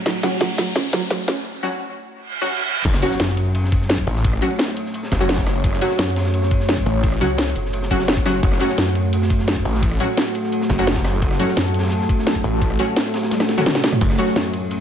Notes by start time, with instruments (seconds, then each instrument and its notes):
Already playing: ambient pad A3 C#5, riser
0.06 felt piano F#3, ambient pad E4, snare, closed hi-hat
0.23 synth stab F#3 C#4 F#4, felt piano C#4, snare, closed hi-hat
0.41 felt piano F#3, snare, closed hi-hat
0.58 felt piano F#3, snare, open hi-hat
0.76 felt piano C#4, snare, closed hi-hat
0.93 felt piano F#3, snare, closed hi-hat
1.10 felt piano F#3, snare, closed hi-hat
1.28 felt piano C#4, snare, open hi-hat
1.63 synth stab F#3 C#4 F#4
2.15 reverse cymbal
2.41 synth stab F#3 C#4 F#4
2.85 detuned saw bass F#1, ambient pad A3 F#4 C#5, kick, closed hi-hat, crash, ride, impact
2.93 cross-stick, snare
3.02 synth stab F#3 C#4 F#4, closed hi-hat, ride
3.11 snare
3.20 wobble bass F#2, snare, closed hi-hat, ride
3.37 closed hi-hat, ride
3.55 closed hi-hat, ride
3.64 snare
3.72 kick, closed hi-hat, ride
3.82 snare
3.89 snare, closed hi-hat, ride
3.98 kick
4.07 detuned saw bass A1, open hi-hat, ride
4.16 snare
4.24 kick, closed hi-hat, ride
4.33 cross-stick
4.42 synth stab F#3 C#4 F#4, closed hi-hat, ride
4.50 ride
4.59 snare, closed hi-hat, ride
4.77 closed hi-hat, ride
4.86 snare
4.94 closed hi-hat, ride
5.03 snare
5.12 detuned saw bass F#1, kick, snare, closed hi-hat, ride
5.20 synth stab F#3 C#4 F#4
5.29 snare, closed hi-hat, ride
5.38 kick, snare, ride
5.47 cross-stick, snare, open hi-hat, ride
5.55 ride
5.63 detuned saw bass F#1, kick, closed hi-hat, ride
5.73 cross-stick, snare
5.81 synth stab F#3 C#4 F#4, closed hi-hat, ride
5.90 snare
5.99 wobble bass F#2, snare, closed hi-hat, ride
6.16 snare, closed hi-hat, ride
6.25 snare, ride
6.34 closed hi-hat, ride
6.42 snare
6.51 kick, closed hi-hat, ride
6.60 snare
6.68 snare, closed hi-hat, ride
6.77 kick
6.86 detuned saw bass A1, open hi-hat, ride
7.04 kick, closed hi-hat, ride
7.12 cross-stick
7.21 wobble bass C#2, synth stab F#3 C#4 F#4, closed hi-hat, ride
7.30 ride
7.38 snare, closed hi-hat, ride
7.55 wobble bass F#1, closed hi-hat, ride
7.65 snare
7.73 closed hi-hat, ride
7.82 snare
7.90 synth stab F#3 C#4 F#4, kick, closed hi-hat, ride
7.99 snare
8.08 snare, closed hi-hat, ride
8.17 kick
8.26 synth stab F#3 C#4 F#4, cross-stick, snare, open hi-hat, ride
8.43 detuned saw bass F#1, ambient pad A4, kick, closed hi-hat, ride
8.52 cross-stick, snare
8.60 synth stab F#3 C#4 F#4, closed hi-hat, ride
8.69 snare
8.78 wobble bass F#2, snare, closed hi-hat, ride
8.95 closed hi-hat, ride
9.13 closed hi-hat, ride
9.22 snare
9.29 kick, closed hi-hat, ride
9.39 snare
9.48 snare, closed hi-hat, ride
9.56 kick
9.65 detuned saw bass A1, open hi-hat, ride
9.74 snare
9.83 kick, closed hi-hat, ride
9.91 cross-stick
10.00 synth stab F#3 C#4 F#4, closed hi-hat, ride
10.08 ride
10.17 snare, closed hi-hat, ride
10.35 closed hi-hat, ride
10.43 snare
10.52 closed hi-hat, ride
10.61 snare
10.70 detuned saw bass F#1, kick, snare, closed hi-hat, ride
10.79 synth stab F#3 C#4 F#4
10.87 snare, closed hi-hat, ride
10.96 kick, snare, ride
11.04 cross-stick, snare, open hi-hat, ride
11.14 ride
11.22 detuned saw bass F#1, kick, closed hi-hat, ride
11.31 cross-stick, snare
11.40 synth stab F#3 C#4 F#4, closed hi-hat, ride
11.48 snare
11.57 wobble bass F#2, snare, closed hi-hat, ride
11.74 closed hi-hat, ride
11.79 snare, ride
11.83 snare, ride
11.87 snare, ride
11.92 closed hi-hat, ride
12.01 snare
12.09 kick, closed hi-hat, ride
12.18 snare
12.27 snare, closed hi-hat, ride
12.35 kick
12.43 detuned saw bass A1, open hi-hat, ride
12.61 kick, closed hi-hat, ride
12.70 cross-stick
12.79 synth stab F#3 C#4 F#4, closed hi-hat, ride
12.88 ride
12.97 snare, closed hi-hat, ride
13.14 snare, closed hi-hat, ride
13.23 snare, ride
13.31 snare, closed hi-hat, high tom, ride
13.40 cross-stick, snare
13.49 snare, closed hi-hat, ride
13.57 synth stab F#3 C#4 F#4, snare, mid tom, ride
13.66 snare, closed hi-hat, mid tom
13.75 snare, ride
13.83 cross-stick, snare, open hi-hat, ride
13.92 cross-stick, mid tom
14.01 detuned saw bass F#1, ambient pad C#5, kick, closed hi-hat, crash, ride
14.10 cross-stick, snare
14.19 synth stab F#3 C#4 F#4, closed hi-hat, ride
14.27 snare
14.36 wobble bass F#2, snare, closed hi-hat, ride
14.53 closed hi-hat, ride
14.71 closed hi-hat, ride